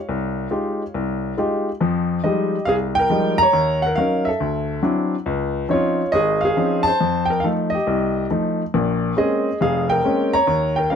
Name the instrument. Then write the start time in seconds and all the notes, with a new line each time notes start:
upright piano
Already playing: C#5 F5
0.09 C2
0.51 G#3 D#4 F4 G4
0.94 C2
1.38 G#3 D#4 F4 G4
1.81 F2 F3
2.24 F3 G3 G#3 D#4 G4 D#5
2.65 C2 G#4 F5
2.95 G5
2.99 A#4
3.09 F3 G3 G#3 D#4
3.38 A#5
3.43 C#5
3.53 D#2
3.82 F#5
3.86 A#4
3.96 F#3 C#4 D#4 A#4 F5
4.25 A4 E5
4.40 D2
4.83 F#3 C4 D4 E4
5.26 C#2
5.69 F3 C4 C#4 D#4 C#5
5.73 F4
6.12 G#1 G#4 D#5
6.41 F5
6.45 G#4
6.57 F3 C4 C#4 D#4
6.83 A5
6.88 C5
7.01 F2
7.25 G5
7.30 A#4
7.40 F3 A3 F5
7.44 D#4 A4
7.70 D#5
7.75 G4
7.87 C2
8.30 F3 A3 D#4
8.74 A#1 A#2
9.17 G#3 A#3 C4 C#4 G#4 D#5
9.61 F1 F2 G#4 F5
9.90 A#4 G5
10.04 G#3 A#3 C4 C#4
10.33 C#5 A#5
10.47 D#2
10.76 A#4 G5
10.90 G3 C#4 D#4 A#4 F5